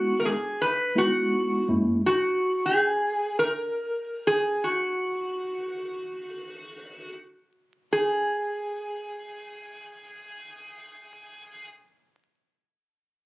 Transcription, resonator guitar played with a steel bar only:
Already playing: F#4
0.20 A#4
0.25 G#4
0.62 B4
0.98 F#4
2.06 F#4
2.66 G#4
3.39 A#4
4.27 G#4
4.64 F#4
7.93 G#4

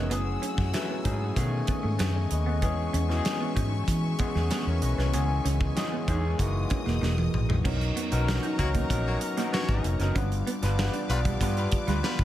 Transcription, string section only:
0.11 F#4 F#5 G#5 E6
1.37 A3 D#5 C#6
2.63 B3 E5 G#5
6.40 A#4 D#5 D#6
7.65 D#5 A#5 C#6
10.16 G4 F5 D6

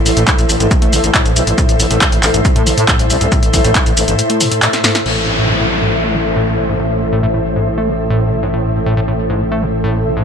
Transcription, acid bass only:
0.06 G#2
0.17 A2
0.39 A2
0.60 G#2
0.71 A2
0.82 A3
0.93 G#2
1.14 A2
1.36 C3
1.47 G#2
1.58 A2
1.80 G#2
1.91 A2
2.12 A2
2.34 G#2
2.45 A2
2.56 A3
2.67 G#2
2.88 A2
3.10 C3
3.21 G#2
3.32 A2
3.54 G#2
3.64 A2
3.75 A2
3.86 A2
4.08 G#2
4.19 A2
4.30 A3
4.41 A2
4.52 A2
4.62 A2
4.84 G#2
4.95 A2
5.06 A2
5.28 G#2
5.38 A2
5.49 A2
5.60 A2
5.82 G#2
5.93 A2
6.04 A3
6.15 G#2
6.36 A2
6.58 C3
6.69 G#2
6.80 A2
7.01 G#2
7.12 A2
7.23 A2
7.34 A2
7.56 G#2
7.67 A2
7.78 A3
7.88 G#2
8.10 A2
8.32 C3
8.43 G#2
8.54 A2
8.75 G#2
8.86 A2
8.97 A2
9.08 A2
9.30 G#2
9.41 A2
9.52 A3
9.62 G#2
9.84 A2
10.06 C3
10.17 G#2

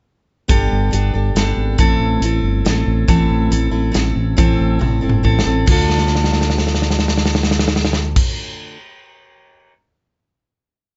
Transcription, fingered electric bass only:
0.50 G1
0.71 G1
0.93 G1
1.14 G1
1.35 G1
1.57 G#1
1.79 A1
2.00 A1
2.20 A1
2.43 G1
2.66 A1
2.87 A1
3.08 A1
3.30 A1
3.52 A1
3.72 A1
3.95 A1
4.16 A1
4.38 A1
4.60 A1
4.81 A1
5.03 G1
5.25 A1
5.45 A1
5.68 D2

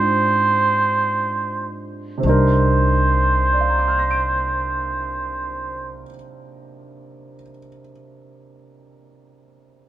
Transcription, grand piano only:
Already playing: G#3 C4 D4 D#4 F4 G4
2.18 C3 C4
2.24 D4 D#4
2.29 A#4
3.53 D5
3.61 F5
3.69 A#5
3.79 D6
3.88 F6
3.99 A#6
4.11 D7

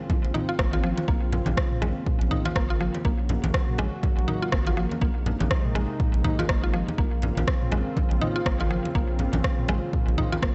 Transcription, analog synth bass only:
0.25 A#1
0.59 G#1
1.08 A#1
1.47 A#1
1.82 A#1
2.21 A#1
2.56 G#1
3.05 A#1
3.44 A#1
3.79 A#1
4.18 A#1
4.52 G#1
5.02 A#1
5.41 A#1
5.75 A#1
6.14 A#1
6.49 G#1
6.98 A#1
7.37 A#1
7.72 A#1
8.11 A#1
8.46 G#1
8.95 A#1
9.34 A#1
9.69 A#1
10.08 A#1
10.42 G#1

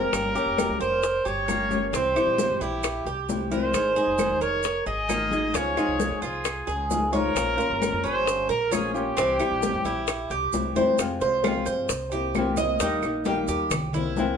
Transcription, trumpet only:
Already playing: A#4
0.81 C5
1.27 C#5
1.87 C#5
1.95 C5
2.62 G4
3.51 C5
4.42 C#5
4.87 D#5
5.56 C#5
6.24 G#4
7.14 A#4
8.05 C5
8.50 A#4
8.73 G#4
8.94 G4

